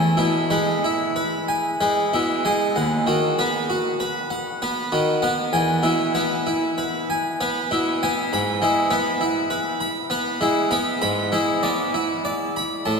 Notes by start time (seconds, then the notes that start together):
Already playing: E2 G#5
0.17 B2 E4
0.50 G#3 B4
0.84 E4
1.16 B4
1.48 G#5
1.81 G#3 B4
2.13 B2 E4
2.45 G#3 G#5
2.76 D#2 F#5
3.07 D#3 F#4
3.39 B3 B4
3.70 F#4
4.00 B4
4.30 F#5
4.62 B3 B4
4.92 D#3 F#4
5.22 B3 F#5
5.53 E2 G#5
5.83 B2 E4
6.15 B3 B4
6.47 E4
6.78 B4
7.10 G#5
7.41 B3 B4
7.71 B2 E4
8.03 B3 G#5
8.33 G#2 B5
8.62 G#3 E4
8.91 B3 B4
9.21 E4
9.50 B4
9.80 B5
10.10 B3 B4
10.41 G#3 E4
10.71 B3 B5
11.02 G#2 B5
11.32 G#3 E4
11.63 B3 D5
11.94 E4
12.25 D5
12.56 B5
12.85 A2 A5